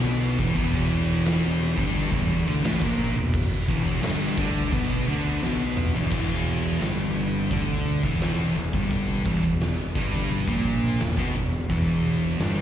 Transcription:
Already playing: B1 B2 B3
0.06 snare
0.38 E1 E2 E3, kick
0.56 E1 E2 E3, kick, crash
0.75 snare
1.25 snare, crash
1.77 G1 G2 G3, kick
1.95 crash
2.12 E1 E2 E3, kick
2.46 D2 D3 D4
2.64 A1 A2 A3, snare, crash
2.81 A#1 A#2 A#3, kick, snare
3.16 E1 E2
3.34 kick, crash
3.53 snare
3.68 E1 E2 E3, kick
4.03 G1 G2 G3, snare, crash
4.37 D2 D3 D4, kick
4.72 B1 B2 B3, kick, crash
5.06 D2 D3 D4
5.41 B1 B2 B3, snare
5.77 mid tom
5.94 E1 E2 E3, floor tom
6.11 E1 E2 E3, kick, crash
6.47 open hi-hat
6.81 G1 G2 G3, snare, open hi-hat
7.16 open hi-hat
7.50 D2 D3 D4, kick, open hi-hat
7.86 open hi-hat
8.03 E1 E2 E3, kick
8.21 snare, open hi-hat
8.55 E1 E2, open hi-hat
8.73 G1 G2 G3, kick
8.91 kick, open hi-hat
9.25 E1 E2 E3, kick, open hi-hat
9.43 E1 E2
9.60 snare, open hi-hat
9.95 G1 G2 G3, kick, open hi-hat
10.30 open hi-hat
10.48 A#1 A#2 A#3, kick
10.65 open hi-hat
11.00 E1 E2, snare, open hi-hat
11.17 B1 B2 B3, kick
11.35 E1 E2, open hi-hat
11.69 E1 E2 E3, kick, open hi-hat
12.04 open hi-hat
12.39 G1 G2 G3, snare, open hi-hat

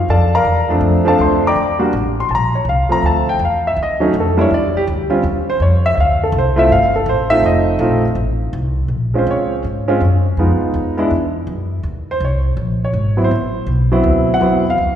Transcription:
0.09 F2 A4 D5 F5 A5
0.35 A#4 D5 F5 A#5
0.45 E2
0.69 F3 A3 C4 D4
0.81 F2
1.05 F3 A3 C4 D4 A4 D5 F5 A5
1.19 D2 C5 C6
1.47 D5 G5 A#5 D6
1.56 E2
1.79 G3 A#3 D4 F#4
1.93 A1
2.20 C6
2.29 A#1 A5
2.35 A#5
2.55 C#5
2.65 C2
2.69 F5
2.89 F3 A3 C4 F4 A#5, muted upright bass stroke
3.02 D2 A5
3.29 G5
3.39 E2
3.45 F5
3.67 E5
3.76 D#2
3.83 D#5
4.00 F#3 A3 C#4 D#4
4.05 F#4
4.14 F2
4.20 A4
4.37 G3 A#3 D4 E4 C#5
4.51 E2 D5
4.74 G4, muted upright bass stroke
4.87 D2
5.10 G3 C4 C#4 F4
5.23 D#2
5.50 C5
5.60 F2 C#5
5.86 E5
5.95 D2 E5
6.00 F5
6.24 A4
6.32 C2
6.38 C5
6.56 A3 C4 E4 F4 E5
6.69 G1 F5
6.96 A4
7.06 A1 C5
7.30 A3 C4 D#4 F4 E5
7.43 F1 D#5
7.79 A#1 A3 C4 D#4 F4
8.15 A1
8.53 C2
8.88 A#1
9.14 G#3 C4 C#4 F4
9.18 C5
9.27 C#2
9.31 C#5
9.64 G#2
9.88 G#3 C4 C#4 F4
10.01 F#2
10.37 F2 G#3 B3 D#4 F4
10.61 muted upright bass stroke
10.74 D#2
10.97 G#3 B3 D4 E4
11.11 E2
11.47 F#2
11.83 D#2
12.11 C5
12.20 C2
12.24 C#5
12.57 A#1
12.85 C#5
12.93 G#1
13.17 F#3 B3 C4 E4
13.24 C5
13.31 A1
13.66 B1
13.92 F#3 B3 C4 E4
14.03 D2
14.34 F#5
14.40 E2 F#3 B3 C4 E4
14.70 F5
14.78 C#2

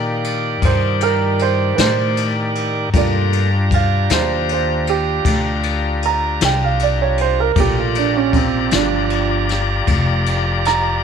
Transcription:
Already playing: A#2 D#3 G4 A#4 D5 F5
0.24 ride
0.62 G2 C5, kick, ride
1.01 A#4, ride
1.39 C5, ride
1.76 A2 B4, snare, ride
1.80 C5
2.17 ride
2.55 ride
2.94 G2 A3 A#3 D4 F4 G4 D5 A#5, kick, ride
3.33 ride
3.71 F5, kick, ride
4.10 D#2 C5, snare, ride
4.49 C5, ride
4.87 G4, ride
5.25 D2, kick, ride
5.63 ride
6.02 A#5, ride
6.41 C2, snare, ride
6.45 G5
6.64 F5
6.79 D5, ride
7.02 C#5
7.18 C5, ride
7.40 A#4
7.56 A#1 A3 A#3 F4 G4 D5 A#5, kick, ride
7.60 G4
7.78 F4
7.95 D4, ride
8.17 C#4
8.33 C4, kick, ride
8.71 G1 F3 D4, snare, ride
9.10 ride
9.49 snare, ride
9.87 F1, kick, ride
10.26 ride
10.65 A#5, snare, ride

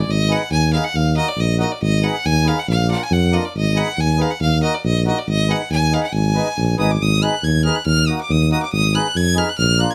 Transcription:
Already playing: D5
0.07 G#1 D#5
0.28 B3 D#4 G#4 B4 F#5
0.50 D#2 G#5
0.73 B3 D#4 G#4 B4 F5
0.85 F#5
0.94 D#2 F5
1.15 A#3 D#4 F#4 A#4 D#5
1.28 D5
1.37 A#1 D#5
1.58 A#3 D#4 F#4 A#4 D#5
1.72 D5
1.81 G#1 D#5
2.02 B3 D#4 G#4 B4 F#5
2.25 D#2 G#5
2.44 B3 D#4 G#4 B4 F5
2.59 F#5
2.67 A#1 F5
2.89 A#3 D4 F4 A#4 F#5
3.03 G#5
3.10 F2 F#5
3.32 A#3 D4 F4 A#4 D#5
3.45 D5
3.54 G#1 D#5
3.75 B3 D#4 G#4 B4 F#5
3.97 D#2 G#5
4.18 B3 D#4 G#4 B4 F5
4.30 F#5
4.40 D#2 F5
4.61 A#3 D#4 F#4 A#4 D#5
4.74 D5
4.84 A#1 D#5
5.05 A#3 D#4 F#4 A#4 D#5
5.19 D5
5.26 G#1 D#5
5.48 B3 D#4 G#4 B4 F#5
5.70 D#2 G#5
5.93 B3 D#4 G#4 B4 F5
6.03 F#5
6.12 G#1 G#5
6.34 B3 D#4 G#4 B4
6.57 A#1
6.77 G#1 B3 D#4 G#4 B4 D#6
6.91 D6
7.00 G#1 D#6
7.21 B3 D#4 G#4 B4 F#6
7.43 D#2 G#6
7.65 B3 D#4 G#4 B4 F6
7.76 F#6
7.85 D#2 F6
8.06 A#3 D#4 F#4 A#4 D#6
8.21 D6
8.29 D#2 D#6
8.51 A#3 D#4 F#4 A#4 D#6
8.63 D6
8.72 G#1 D#6
8.94 B3 D#4 G#4 B4 F#6
9.15 F2 G#6
9.35 B3 D#4 G#4 B4 F6
9.49 F#6
9.58 A#1 F6
9.78 A#3 D4 F4 A#4 F#6
9.91 G#6

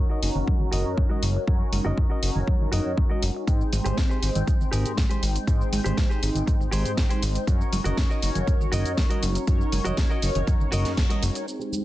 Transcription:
Already playing: C#4 D#4 F#4 A#4 C#5
0.09 F#4 A#4 D#5
0.22 F#1 C#4 D#4 F#4 A#4 C#5, open hi-hat
0.35 F#1, tambourine, low conga
0.47 F#2, muted clean electric guitar stroke, kick, tambourine, high conga
0.60 tambourine, low conga
0.72 F#1 C#4 D#4 F#4 A#4 C#5 D#5, open hi-hat, tambourine
0.85 F#2
0.97 F#2, kick
1.09 F#4 A#4 D#5, tambourine, high conga
1.22 F#1, open hi-hat, tambourine
1.35 muted clean electric guitar stroke, tambourine
1.47 F#2 C#4 D#4 F#4 A#4 C#5, kick
1.61 tambourine
1.72 F#1, open hi-hat, tambourine, high conga
1.85 F#1 F#4 A#4 D#5, tambourine, low conga
1.98 F#2, kick, tambourine
2.10 F#4 A#4 D#5
2.22 F#1 C#4 D#4 F#4 A#4 C#5, open hi-hat
2.35 F#1, tambourine, low conga
2.47 F#2, muted clean electric guitar stroke, kick, tambourine, high conga
2.61 F#1, tambourine, low conga
2.72 F#1 C#4 D#4 F#4 A#4 C#5 D#5, open hi-hat, tambourine
2.85 F#2
2.97 F#2, kick
3.10 F#4 A#4 D#5, tambourine, high conga
3.23 F#1, open hi-hat, tambourine
3.35 muted clean electric guitar stroke, tambourine
3.47 G#2 G#3 C4 D#4 C5 G5, kick, closed hi-hat, shaker
3.61 tambourine, shaker
3.73 G#1, open hi-hat, tambourine, high conga, shaker
3.84 G#1 G4 G#4 C5, closed hi-hat, tambourine, low conga, shaker
3.98 G#2, kick, snare, closed hi-hat, shaker
4.09 G4 G#4 C5, shaker
4.22 G#1 G#3 C4 D#4 C5 G5, open hi-hat, shaker
4.35 G#1, closed hi-hat, tambourine, low conga, shaker
4.47 G#2, muted clean electric guitar stroke, kick, closed hi-hat, tambourine, high conga, shaker
4.61 tambourine, low conga, shaker
4.71 G#1 G#3 C4 D#4 G4 G#4 A#4 C5 G5, open hi-hat, tambourine, shaker
4.86 G#2, closed hi-hat, shaker
4.97 G#2, kick, snare, closed hi-hat, shaker
5.09 G4 G#4 C5, closed hi-hat, tambourine, high conga, shaker
5.22 G#1, open hi-hat, tambourine, shaker
5.34 muted clean electric guitar stroke, closed hi-hat, tambourine, shaker
5.47 G#2 G#3 C4 D#4 C5 G5, kick, closed hi-hat, shaker
5.61 tambourine, shaker
5.72 G#1, open hi-hat, tambourine, high conga, shaker
5.84 G#1 G4 G#4 C5, closed hi-hat, tambourine, low conga, shaker
5.97 G#2, kick, snare, closed hi-hat, tambourine, shaker
6.09 G4 G#4 C5, shaker
6.22 G#1 G#3 C4 D#4 C5 G5, open hi-hat, tambourine, shaker
6.35 G#1, closed hi-hat, tambourine, low conga, shaker
6.46 G#2, muted clean electric guitar stroke, kick, closed hi-hat, tambourine, high conga, shaker
6.60 G#1, tambourine, low conga, shaker
6.71 G#1 G#3 C4 D#4 G4 G#4 C5 G5, open hi-hat, tambourine, shaker
6.85 G#2, closed hi-hat, shaker
6.97 G#2, kick, snare, closed hi-hat, shaker
7.09 G4 G#4 C5, closed hi-hat, tambourine, high conga, shaker
7.22 G#1, open hi-hat, tambourine, shaker
7.34 muted clean electric guitar stroke, closed hi-hat, tambourine, shaker
7.47 F#2 C#4 D#4 F#4 A#4 C#5, kick, closed hi-hat, shaker
7.60 tambourine, shaker
7.72 F#1, open hi-hat, tambourine, high conga, shaker
7.84 F#1 F#4 A#4 D#5, closed hi-hat, tambourine, low conga, shaker
7.97 F#2, kick, snare, closed hi-hat, tambourine, shaker
8.09 F#4 A#4 D#5, shaker
8.22 F#1 C#4 D#4 F#4 A#4 C#5, open hi-hat, tambourine, shaker
8.35 F#1, closed hi-hat, tambourine, low conga, shaker
8.47 F#2, muted clean electric guitar stroke, kick, closed hi-hat, tambourine, high conga, shaker
8.61 tambourine, low conga, shaker
8.72 F#1 C#4 D#4 F#4 A#4 C#5 D#5, open hi-hat, tambourine, shaker
8.85 F#2, closed hi-hat, shaker
8.97 F#2, kick, snare, closed hi-hat, shaker
9.10 F#4 A#4 D#5, closed hi-hat, tambourine, high conga, shaker
9.23 F#1, open hi-hat, tambourine, shaker
9.35 muted clean electric guitar stroke, closed hi-hat, tambourine, shaker
9.47 F#2 C#4 D#4 F#4 A#4 C#5, kick, closed hi-hat, tambourine, shaker
9.61 tambourine, shaker
9.72 F#1, open hi-hat, tambourine, high conga, shaker
9.84 F#1 F#4 A#4 D#5, closed hi-hat, tambourine, low conga, shaker
9.97 F#2, kick, snare, closed hi-hat, shaker
10.09 F#4 A#4 D#5, tambourine, shaker
10.22 F#1 C#4 D#4 F#4 A#4 C#5, open hi-hat, tambourine, shaker
10.35 F#1, closed hi-hat, tambourine, low conga, shaker
10.47 F#2, muted clean electric guitar stroke, kick, closed hi-hat, tambourine, high conga, shaker
10.60 F#1, tambourine, low conga, shaker
10.72 F#1 C#4 D#4 F#4 A#4 C#5 D#5, open hi-hat, tambourine, shaker
10.85 F#2, snare, closed hi-hat, shaker
10.97 F#2, kick, snare, open hi-hat, shaker
11.09 F#4 A#4 D#5, closed hi-hat, tambourine, high conga, shaker
11.22 F#1, open hi-hat, tambourine, shaker
11.34 muted clean electric guitar stroke, closed hi-hat, tambourine, shaker
11.47 G#3 C4 D#4 C5 G5, tambourine, shaker
11.59 G4 G#4 C5, shaker
11.72 tambourine, high conga, shaker

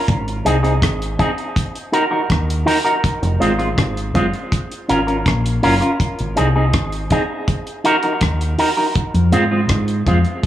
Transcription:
0.08 G#1, kick, closed hi-hat
0.28 closed hi-hat
0.45 C2 C4 D#4 G#4, closed hi-hat
0.63 C4 D#4 G#4, closed hi-hat
0.82 G#1, kick, cross-stick, closed hi-hat
1.02 closed hi-hat
1.19 C4 D#4 G#4, kick, closed hi-hat
1.38 closed hi-hat
1.56 kick, closed hi-hat
1.75 closed hi-hat
1.92 D#4 F#4 A#4, closed hi-hat
2.11 D#4 F#4 A#4
2.30 D#2, kick, cross-stick, closed hi-hat
2.50 closed hi-hat
2.66 D#4 F#4 A#4, open hi-hat
2.85 D#4 F#4 A#4, closed hi-hat
3.04 kick, closed hi-hat
3.22 F1, closed hi-hat
3.40 G#1 G#3 C4 F4, closed hi-hat
3.59 G#3 C4 F4, closed hi-hat
3.78 G#1, kick, cross-stick, closed hi-hat
3.97 closed hi-hat
4.14 F#1 G#3 C4 F4, kick, closed hi-hat
4.33 closed hi-hat
4.52 kick, closed hi-hat
4.72 closed hi-hat
4.88 G#1 C#4 F4 A#4, closed hi-hat
5.07 C#4 F4 A#4, closed hi-hat
5.26 A#1, kick, cross-stick, closed hi-hat
5.46 closed hi-hat
5.63 F#1 C#4 F4 A#4, open hi-hat
5.81 C#4 F4 A#4, closed hi-hat
6.00 kick, closed hi-hat
6.19 G#1, closed hi-hat
6.36 C2 C4 D#4 G#4, closed hi-hat
6.56 C4 D#4 G#4
6.73 G#1, kick, cross-stick, closed hi-hat
6.92 closed hi-hat
7.10 C4 D#4 G#4, kick, closed hi-hat
7.48 kick, closed hi-hat
7.67 closed hi-hat
7.84 D#4 F#4 A#4, closed hi-hat
8.03 D#4 F#4 A#4, closed hi-hat
8.21 D#2, kick, cross-stick, closed hi-hat
8.41 closed hi-hat
8.58 D#4 F#4 A#4, open hi-hat
8.77 D#4 F#4 A#4
8.95 kick, closed hi-hat
9.14 F2, closed hi-hat
9.32 G#2 G#3 C4 F4, closed hi-hat
9.51 G#3 C4 F4
9.69 G#2, kick, cross-stick, closed hi-hat
9.88 closed hi-hat
10.06 F2 G#3 C4 F4, kick, closed hi-hat
10.25 closed hi-hat
10.43 kick

